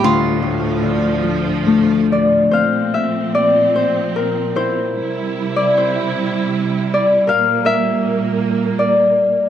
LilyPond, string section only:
\new Staff \with { instrumentName = "String section" } { \clef bass \time 3/4 \key bes \lydian \tempo 4 = 76 << { <d, a, f>2. | <bes, c'>2. | <c e'>2. | <bes, bes>2. | } \\ { r2. | f2. | g2.~ | g2. | } >> }